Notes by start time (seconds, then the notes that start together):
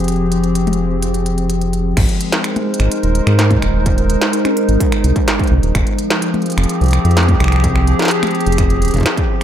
Already playing: F1 F3 C4 G4 G#4
0.00 closed hi-hat
0.04 closed hi-hat
0.08 closed hi-hat
0.16 closed hi-hat
0.32 closed hi-hat
0.44 closed hi-hat
0.55 closed hi-hat
0.67 closed hi-hat, high tom
0.73 closed hi-hat
1.03 closed hi-hat
1.14 closed hi-hat
1.26 closed hi-hat
1.38 closed hi-hat
1.50 closed hi-hat
1.61 closed hi-hat
1.73 closed hi-hat
1.97 G#1 G#3, finger snap, kick, closed hi-hat, crash
2.09 A#4 C5, closed hi-hat
2.13 D#4
2.21 closed hi-hat
2.32 snare, closed hi-hat
2.44 finger snap, closed hi-hat
2.56 closed hi-hat, high tom
2.74 closed hi-hat
2.80 G#1, finger snap, closed hi-hat
2.92 closed hi-hat
3.03 D#1, closed hi-hat
3.15 closed hi-hat
3.27 G#2, finger snap, closed hi-hat
3.39 snare, closed hi-hat, high tom
3.51 kick, closed hi-hat, high tom
3.62 D#1, finger snap, closed hi-hat
3.86 kick, closed hi-hat
3.98 closed hi-hat
4.10 closed hi-hat
4.21 snare, closed hi-hat
4.33 closed hi-hat
4.45 finger snap, closed hi-hat, high tom
4.57 closed hi-hat
4.69 G#1, closed hi-hat
4.80 kick, closed hi-hat
4.92 finger snap, closed hi-hat
5.04 C2, closed hi-hat
5.16 kick, closed hi-hat
5.28 finger snap, snare, closed hi-hat
5.39 kick, closed hi-hat
5.44 closed hi-hat
5.47 C2, closed hi-hat
5.63 D#1, closed hi-hat
5.75 F1 F3, finger snap, kick, closed hi-hat
5.87 closed hi-hat
5.98 C4 G4 G#4, closed hi-hat
6.10 finger snap, snare, closed hi-hat
6.22 closed hi-hat
6.34 closed hi-hat, high tom
6.42 closed hi-hat
6.46 closed hi-hat
6.50 closed hi-hat
6.52 closed hi-hat
6.57 F1, finger snap, closed hi-hat
6.64 closed hi-hat
6.69 closed hi-hat
6.81 C2, closed hi-hat
6.84 closed hi-hat
6.86 closed hi-hat
6.88 closed hi-hat
6.91 finger snap, closed hi-hat
6.93 closed hi-hat
7.05 F2, closed hi-hat
7.11 closed hi-hat
7.17 snare, closed hi-hat, high tom
7.23 closed hi-hat
7.28 kick, closed hi-hat, high tom
7.40 C2, finger snap, closed hi-hat
7.44 finger snap
7.48 finger snap
7.52 finger snap, closed hi-hat
7.56 finger snap
7.60 finger snap, kick, closed hi-hat
7.76 finger snap
7.87 closed hi-hat
7.99 snare, closed hi-hat
8.02 snare
8.05 snare
8.08 snare, closed hi-hat
8.23 finger snap, closed hi-hat, high tom
8.27 closed hi-hat
8.31 closed hi-hat
8.35 closed hi-hat
8.41 closed hi-hat
8.46 F1, closed hi-hat
8.52 closed hi-hat
8.58 finger snap, kick, closed hi-hat
8.70 closed hi-hat
8.82 D#1, closed hi-hat
8.85 closed hi-hat
8.88 closed hi-hat
8.91 F1, kick, closed hi-hat
8.94 kick, closed hi-hat
8.97 kick, closed hi-hat
9.00 kick, closed hi-hat
9.03 finger snap, kick, snare, closed hi-hat
9.06 closed hi-hat
9.17 kick, closed hi-hat